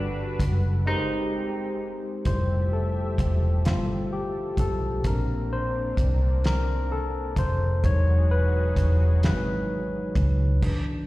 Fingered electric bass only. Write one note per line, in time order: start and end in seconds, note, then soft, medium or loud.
0.00 0.36 G1 loud
0.40 0.86 F#1 medium
2.26 3.15 F1 loud
3.19 3.66 E1 medium
3.66 4.55 G1 medium
4.58 5.00 B1 medium
5.05 5.94 A#1 loud
5.98 7.33 C2 medium
7.37 7.80 F1 medium
7.84 8.73 E1 medium
8.77 9.24 E1 medium
9.24 10.13 G#1 medium
10.16 10.59 C#2 medium